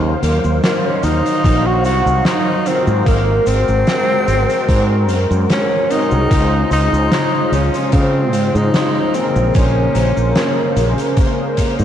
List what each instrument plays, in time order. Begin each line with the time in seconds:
Already playing: fretless electric bass D#2, analog synth pad D#3 F#3 C5 F5, analog polysynth F#3 D#4 C5 F5
0.22 fretless electric bass D#2, tenor saxophone A#3, closed hi-hat, cabasa
0.44 fretless electric bass D#2, cabasa
0.63 tenor saxophone A#3, snare, closed hi-hat, cabasa
0.85 tenor saxophone C#4
1.03 fretless electric bass D#2, tenor saxophone D#4, closed hi-hat, cabasa
1.26 closed hi-hat, cabasa
1.44 fretless electric bass A#1, kick, closed hi-hat, cabasa
1.66 tenor saxophone F#4
1.84 fretless electric bass C2, tenor saxophone F#4, closed hi-hat, cabasa
2.06 fretless electric bass C2, cabasa
2.25 tenor saxophone D#4, snare, closed hi-hat, cabasa
2.65 analog polysynth F#3 D#4 F4 A#4, tenor saxophone C4, closed hi-hat, cabasa
2.87 fretless electric bass G#2, cabasa
3.05 fretless electric bass G#1, analog polysynth G#3 F#4 A#4 C5, analog synth pad G#3 F#4, tenor saxophone A#3, kick, closed hi-hat, cabasa
3.47 fretless electric bass G#1, tenor saxophone C4, closed hi-hat, cabasa
3.68 fretless electric bass G#1, cabasa
3.87 snare, closed hi-hat, cabasa
4.28 fretless electric bass G#1, closed hi-hat, cabasa
4.50 closed hi-hat, cabasa
4.69 fretless electric bass G#2, kick, closed hi-hat, cabasa
5.09 fretless electric bass F#2, closed hi-hat, cabasa
5.31 fretless electric bass F#2, cabasa
5.50 tenor saxophone C#4, snare, closed hi-hat, cabasa
5.90 analog polysynth G#3 C4 F#4 G#4, tenor saxophone D#4, closed hi-hat, cabasa
6.11 fretless electric bass C2, cabasa
6.29 fretless electric bass C#2, analog polysynth C#3 G#3 F4 C5, analog synth pad C#3 F4 C5, kick, closed hi-hat, cabasa
6.71 fretless electric bass C#2, tenor saxophone D#4, closed hi-hat, cabasa
6.93 fretless electric bass C#2, cabasa
7.12 snare, closed hi-hat, cabasa
7.52 fretless electric bass C#2, tenor saxophone C#4, closed hi-hat, cabasa
7.74 closed hi-hat, cabasa
7.92 fretless electric bass C#3, tenor saxophone C4, kick, closed hi-hat, cabasa
8.33 fretless electric bass G#2, closed hi-hat, cabasa
8.55 fretless electric bass G#2, tenor saxophone D#4, cabasa
8.74 snare, closed hi-hat, cabasa
9.14 analog polysynth C#3 A#3 G#4 A#4, analog synth pad A#3, tenor saxophone C4, closed hi-hat, cabasa
9.36 fretless electric bass A#1, cabasa
9.54 fretless electric bass A#1, analog polysynth A#3 C#4 G#4 C5, tenor saxophone C#4, kick, closed hi-hat, cabasa
9.95 fretless electric bass A#1, closed hi-hat, cabasa
10.17 fretless electric bass A#1, cabasa
10.36 snare, closed hi-hat, cabasa
10.77 fretless electric bass A#1, closed hi-hat, cabasa
10.98 closed hi-hat, cabasa
11.17 kick, closed hi-hat, cabasa
11.57 kick, closed hi-hat, cabasa
11.79 fretless electric bass G#2, cabasa